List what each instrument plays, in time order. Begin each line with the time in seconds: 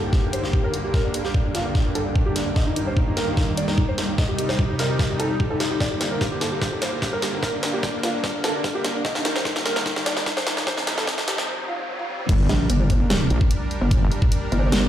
Already playing: supersaw synth G2 D3 A#3, ambient pad D4 G4 A#4 C5 G5
0.03 felt piano G4
0.13 felt piano G4, kick, snare
0.23 felt piano G4
0.33 felt piano C5, closed hi-hat
0.44 felt piano G4, snare
0.53 felt piano G4, kick
0.64 felt piano A#4
0.74 felt piano G4, closed hi-hat
0.84 felt piano G4
0.94 felt piano A#4, kick, snare
1.04 felt piano D4
1.14 felt piano D4, closed hi-hat
1.25 felt piano G4, snare
1.34 felt piano D4, kick
1.45 felt piano D4
1.55 felt piano F4, snare, closed hi-hat
1.65 felt piano D4
1.75 felt piano D4, kick, snare
1.85 felt piano D4
1.95 felt piano A4, closed hi-hat
2.06 felt piano D4
2.15 felt piano D4, kick
2.26 felt piano G4
2.36 felt piano D4, snare, closed hi-hat
2.46 felt piano D4
2.56 supersaw synth D#3 A#3, ambient pad G3, felt piano D#5, kick, snare
2.67 felt piano D#4
2.71 ambient pad D#4
2.76 felt piano D#4, closed hi-hat
2.87 felt piano C5
2.97 felt piano D#4, kick
3.07 felt piano D#4
3.17 felt piano A#4, snare, closed hi-hat
3.27 felt piano D#4
3.37 felt piano D#4, kick, snare
3.48 felt piano D#4
3.57 felt piano D5, closed hi-hat
3.68 felt piano D#4, snare
3.78 felt piano D#4, kick
3.88 felt piano C5
3.98 felt piano D#4, snare, closed hi-hat
4.08 felt piano D#4
4.18 supersaw synth C3 G3 D#4, felt piano D#5, kick, snare
4.29 felt piano G4
4.39 felt piano G4, ambient pad C5, closed hi-hat
4.49 felt piano C5, snare
4.59 felt piano G4, kick
4.69 felt piano G4
4.79 felt piano A#4, snare, closed hi-hat
4.89 felt piano G4
4.99 felt piano G4, kick, snare
5.10 felt piano G4
5.20 felt piano A4, closed hi-hat
5.30 felt piano G4
5.40 felt piano G4, kick
5.50 felt piano A4
5.60 felt piano G4, snare, closed hi-hat
5.71 felt piano G4
5.80 supersaw synth G2 D3 A#3, ambient pad D4, felt piano D5, kick, snare, riser
5.91 felt piano G4
5.98 felt piano G4, ambient pad A#4, snare, closed hi-hat
6.11 felt piano A#4
6.21 felt piano G4, kick, snare
6.32 felt piano G4
6.41 felt piano A4, snare, closed hi-hat
6.52 felt piano G4
6.62 felt piano G4, kick, snare
6.72 felt piano G4
6.82 felt piano C5, snare, closed hi-hat
6.92 felt piano G4
7.02 felt piano G4, kick, snare
7.13 felt piano A#4
7.22 felt piano G4, snare, closed hi-hat
7.33 felt piano G4
7.43 felt piano A#4, kick, snare
7.53 felt piano D4
7.63 felt piano D4, snare, closed hi-hat
7.73 felt piano G4
7.83 felt piano D4, kick, snare
7.94 felt piano D4
8.03 felt piano F4, snare, closed hi-hat
8.14 felt piano D4
8.24 felt piano D4, kick, snare
8.34 felt piano D4
8.44 felt piano A4, snare, closed hi-hat
8.54 felt piano D4
8.64 felt piano D4, kick, snare
8.75 felt piano G4
8.84 felt piano D4, snare, closed hi-hat
8.95 felt piano D4
9.05 supersaw synth G2 D#3, ambient pad G3 D#4, felt piano D#5, kick, snare
9.15 felt piano D#4, snare
9.25 felt piano D#4, snare, closed hi-hat
9.35 felt piano C5, snare
9.45 felt piano D#4, kick, snare
9.56 felt piano D#4, snare
9.66 felt piano A#4, snare, closed hi-hat
9.76 felt piano D#4, snare
9.86 felt piano D#4, kick, snare
9.96 felt piano D#4, snare
10.06 felt piano D5, snare, closed hi-hat
10.17 felt piano D#4, snare
10.26 felt piano D#4, kick, snare
10.37 felt piano C5, snare
10.47 felt piano D#4, snare, closed hi-hat
10.57 felt piano D#4, snare
10.67 supersaw synth C3 G3 D#4, felt piano C5, kick, snare
10.77 felt piano C4, snare
10.87 felt piano C4, snare, closed hi-hat
10.98 felt piano A4, snare
11.07 felt piano C4, kick, snare
11.18 felt piano C4, snare
11.28 felt piano G4, snare, closed hi-hat
11.38 felt piano C4, snare
11.48 felt piano C4
11.58 felt piano C4
11.68 felt piano F4
11.79 felt piano C4
11.88 felt piano C4
11.99 felt piano F4
12.09 felt piano C4
12.19 felt piano C4
12.29 wobble bass G1, supersaw synth G3 D4 A#4, ambient pad D4, kick, closed hi-hat, crash, impact
12.49 wobble bass A#1, snare, closed hi-hat
12.69 wobble bass G1, ambient pad A#4, closed hi-hat
12.90 kick, closed hi-hat
13.10 snare, closed hi-hat
13.30 wobble bass A#1, closed hi-hat
13.41 kick
13.51 closed hi-hat
13.71 closed hi-hat
13.81 wobble bass G1
13.91 kick, closed hi-hat
14.02 wobble bass G1
14.12 closed hi-hat
14.22 kick
14.32 closed hi-hat
14.52 wobble bass G1, closed hi-hat
14.72 snare, closed hi-hat